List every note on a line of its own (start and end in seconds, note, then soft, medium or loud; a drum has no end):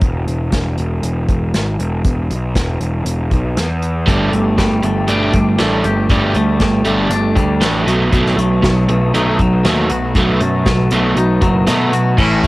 0.01 0.27 E1 medium
0.01 kick loud
0.01 closed hi-hat medium
0.27 0.52 E1 medium
0.27 closed hi-hat soft
0.52 0.77 E1 medium
0.52 kick medium
0.52 snare loud
0.52 closed hi-hat medium
0.78 1.02 E1 medium
0.78 closed hi-hat medium
1.03 1.28 E1 medium
1.03 closed hi-hat medium
1.29 1.53 E1 medium
1.29 kick medium
1.29 closed hi-hat medium
1.54 1.78 G#1 medium
1.54 snare loud
1.54 closed hi-hat medium
1.79 2.04 E1 medium
1.79 closed hi-hat medium
2.05 2.29 E1 medium
2.05 kick medium
2.05 closed hi-hat medium
2.30 2.55 B1 medium
2.30 closed hi-hat medium
2.55 2.80 E1 medium
2.55 kick medium
2.55 snare loud
2.55 closed hi-hat medium
2.80 3.04 E1 medium
2.80 closed hi-hat medium
3.05 3.30 E1 medium
3.05 closed hi-hat medium
3.31 3.56 B1 medium
3.31 kick medium
3.31 closed hi-hat medium
3.57 4.06 E2 medium
3.57 snare loud
3.57 closed hi-hat medium
3.82 closed hi-hat medium
4.06 4.31 G1 medium
4.06 4.31 G3 medium
4.06 4.30 A3 medium
4.06 4.31 D4 loud
4.06 7.83 A4 medium
4.06 7.83 G5 medium
4.06 7.83 D6 medium
4.06 kick loud
4.06 closed hi-hat medium
4.32 4.57 G1 medium
4.32 4.55 G3 medium
4.32 4.55 A3 medium
4.32 closed hi-hat medium
4.58 4.82 G1 medium
4.58 4.81 G3 medium
4.58 4.81 A3 medium
4.58 kick medium
4.58 snare loud
4.58 closed hi-hat medium
4.83 5.08 G1 medium
4.83 5.06 G3 medium
4.83 5.06 A3 medium
4.83 closed hi-hat medium
5.08 5.33 G1 medium
5.08 5.32 G3 medium
5.08 5.32 A3 medium
5.08 5.33 D4 medium
5.08 closed hi-hat medium
5.33 5.58 G1 medium
5.33 5.57 G3 medium
5.33 5.57 A3 medium
5.33 kick medium
5.33 closed hi-hat medium
5.58 5.83 A1 medium
5.58 5.83 G3 medium
5.58 5.83 A3 medium
5.58 5.84 D4 medium
5.58 snare loud
5.58 closed hi-hat medium
5.84 6.09 G1 medium
5.84 6.08 G3 medium
5.84 6.08 A3 medium
5.84 7.11 G4 medium
5.84 closed hi-hat medium
6.09 6.34 G1 medium
6.09 6.34 G3 medium
6.09 6.34 A3 medium
6.09 6.35 D4 medium
6.09 kick loud
6.09 closed hi-hat medium
6.34 6.60 D2 medium
6.34 6.59 G3 medium
6.34 6.59 A3 medium
6.34 closed hi-hat medium
6.60 6.84 G1 medium
6.60 6.84 G3 medium
6.60 6.84 A3 medium
6.60 kick medium
6.60 snare loud
6.60 closed hi-hat medium
6.85 7.09 G1 medium
6.85 7.09 G3 medium
6.85 7.09 A3 medium
6.85 7.10 D4 medium
6.85 closed hi-hat medium
7.10 7.35 G1 medium
7.10 7.34 G3 medium
7.10 7.34 A3 medium
7.10 7.87 D4 medium
7.10 closed hi-hat medium
7.36 7.60 D2 medium
7.36 7.59 G3 medium
7.36 7.59 A3 medium
7.36 kick medium
7.36 closed hi-hat medium
7.61 7.85 A1 medium
7.61 7.85 G3 medium
7.61 7.86 A3 loud
7.61 7.86 D4 loud
7.61 snare loud
7.61 closed hi-hat medium
7.86 8.11 B1 medium
7.86 8.11 B2 medium
7.86 8.11 F#3 medium
7.86 8.11 A3 medium
7.86 12.14 B4 medium
7.86 9.87 A5 medium
7.86 12.13 D#6 medium
7.86 closed hi-hat medium
8.12 8.36 B1 medium
8.12 8.36 B2 loud
8.12 8.36 F#3 loud
8.12 8.37 A3 loud
8.12 kick loud
8.12 closed hi-hat medium
8.27 snare soft
8.36 8.62 B1 medium
8.36 8.60 B2 medium
8.36 8.60 F#3 medium
8.36 8.89 A3 medium
8.36 closed hi-hat medium
8.63 8.88 B1 medium
8.63 8.86 B2 medium
8.63 8.86 F#3 medium
8.63 kick medium
8.63 snare loud
8.63 closed hi-hat medium
8.89 9.13 B1 medium
8.89 9.12 B2 medium
8.89 9.12 F#3 medium
8.89 9.64 A3 medium
8.89 closed hi-hat soft
9.14 9.39 B1 medium
9.14 9.38 B2 medium
9.14 9.38 F#3 medium
9.14 9.38 A3 medium
9.14 10.41 D#4 medium
9.14 closed hi-hat medium
9.39 9.64 B1 medium
9.39 9.62 B2 medium
9.39 9.63 F#3 medium
9.39 kick medium
9.39 closed hi-hat medium
9.65 9.89 D#2 medium
9.65 9.89 B2 medium
9.65 9.89 F#3 loud
9.65 9.89 A3 loud
9.65 snare loud
9.65 closed hi-hat medium
9.90 10.15 B1 medium
9.90 10.13 B2 medium
9.90 10.14 F#3 medium
9.90 11.17 F#4 medium
9.90 12.16 B5 medium
9.90 closed hi-hat medium
10.15 10.40 B1 medium
10.15 10.39 B2 medium
10.15 10.40 F#3 loud
10.15 10.40 A3 loud
10.15 kick loud
10.15 closed hi-hat medium
10.41 10.65 F#2 medium
10.41 10.64 B2 medium
10.41 10.64 F#3 medium
10.41 10.91 A3 medium
10.41 closed hi-hat medium
10.66 10.90 B1 medium
10.66 10.89 B2 medium
10.66 10.89 F#3 medium
10.66 kick medium
10.66 snare loud
10.66 closed hi-hat medium
10.91 11.15 B1 medium
10.91 11.15 B2 medium
10.91 11.16 F#3 medium
10.91 11.16 A3 medium
10.91 closed hi-hat medium
11.16 11.41 B1 medium
11.16 11.40 B2 medium
11.16 11.40 F#3 medium
11.16 12.18 D#4 medium
11.16 closed hi-hat medium
11.42 11.66 F#1 medium
11.42 11.65 B2 medium
11.42 11.65 F#3 medium
11.42 kick medium
11.42 closed hi-hat medium
11.67 12.16 B2 medium
11.67 11.91 B2 medium
11.67 11.91 F#3 medium
11.67 11.91 A3 loud
11.67 snare loud
11.67 closed hi-hat loud
11.93 12.16 B2 medium
11.93 12.16 F#3 medium
11.93 12.18 F#4 medium
11.93 closed hi-hat medium
12.17 12.42 A1 medium
12.17 12.47 A2 medium
12.17 12.47 E3 medium
12.17 12.47 A3 medium
12.17 12.47 C#4 medium
12.17 12.47 E4 medium
12.17 12.47 A4 medium
12.17 12.47 E5 medium
12.17 12.47 C#6 medium
12.17 kick loud
12.17 crash loud
12.43 12.47 A1 medium
12.43 12.47 A3 medium
12.43 kick medium
12.43 closed hi-hat medium